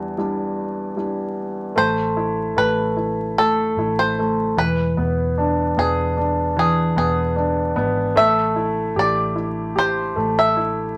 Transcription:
Already playing: E2 G3 D4 E4 G4
0.18 G3 D4 E4
0.96 G3 D4 E4
1.76 A1 A3 C5
2.17 E4
2.56 A1 A3 B4
2.97 E4
3.38 A3 A4
3.77 A1 E4
3.99 C5
4.19 A3
4.57 E1 E3 B4
4.97 E1 B3
5.38 D4
5.77 E1 B3 G#4
6.17 D4
6.57 E3 G#4
6.96 E1 B3 G#4
7.36 D4
7.76 G#1 B3
8.16 A1 A3 E5
8.56 E4
8.96 A1 G4 D5
9.36 E4
9.76 G4 C5
10.16 A1 A3
10.39 E5
10.57 E4

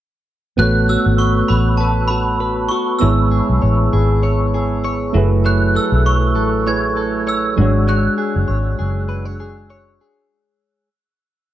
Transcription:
0.57 A1 A3 B3 F#4 A4 B4 F#6
0.62 C#5
0.89 F#4 E6
1.06 G#1
1.18 B4 C#6
1.48 A1 F#4 B5
1.77 B4 A5
2.08 F#4 B5
2.40 B4
2.69 F#4 C#6
2.99 G#1 G#3 B3 E4 C#5 E6
3.03 G#4 C#5
3.31 G#4
3.50 B1
3.62 A1 C#5
3.93 G#1 G#4
4.23 C#5
4.54 G#4
4.84 C#5
5.13 F#1 F#3 A3 E4 G#4
5.18 B4
5.45 F#3 C#5 F#6
5.75 A4 E6
5.92 B1
6.06 C#5 C#6
6.35 A1 A4
6.66 A3 E4 G#4 B4 C#5 G#6
6.97 A4
7.27 C#5 E6
7.56 G#1 F#3 G#3 D4 F#4
7.61 G#3 C#5
7.88 G#3 C#5 F#6
8.18 G#4
8.36 F#1
8.48 G#1 C#5
8.79 F#1 G#4
9.09 B4
9.25 C#5
9.40 G#4
9.70 C#5
10.01 G#4

